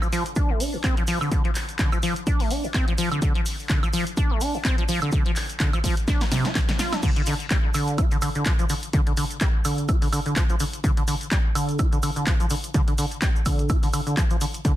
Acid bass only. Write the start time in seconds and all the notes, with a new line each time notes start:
0.02 F3
0.12 F3
0.36 D4
0.50 A3
0.60 D4
0.73 D3
0.84 C4
0.97 F3
1.08 F3
1.21 D3
1.32 D3
1.45 F3
1.79 D3
1.92 F3
2.03 F3
2.27 D4
2.40 A3
2.51 D4
2.64 D3
2.74 C4
2.88 F3
2.98 F3
3.11 D3
3.22 D3
3.35 F3
3.70 D3
3.83 F3
3.93 F3
4.17 D4
4.31 A3
4.41 D4
4.54 D3
4.65 C4
4.78 F3
4.89 F3
5.02 D3
5.26 F3
5.60 D3
5.73 F3
5.84 F3
6.08 D4
6.21 A3
6.31 C3
6.45 F4
6.55 D3
6.69 D3
6.79 F4
6.93 D4
7.03 D3
7.16 D3
7.27 D3
7.51 G3
7.74 D3
7.98 F4
8.12 D3
8.22 D3
8.35 D3
8.46 F3
8.59 F3
8.70 D3
8.93 D3
9.07 D3
9.17 D3
9.41 G3
9.65 D3
9.89 F4
10.02 D3
10.12 D3
10.26 D3
10.36 F3
10.50 F3
10.60 D3
10.84 D3
10.97 D3
11.08 D3
11.31 G3
11.55 D3
11.79 F4
11.92 D3
12.03 D3
12.16 D3
12.27 F3
12.40 F3
12.50 D3
12.74 D3
12.88 D3
12.98 D3
13.22 G3
13.46 D3
13.69 F4
13.83 D3
13.93 D3
14.07 D3
14.17 F3
14.31 F3
14.41 D3
14.65 D3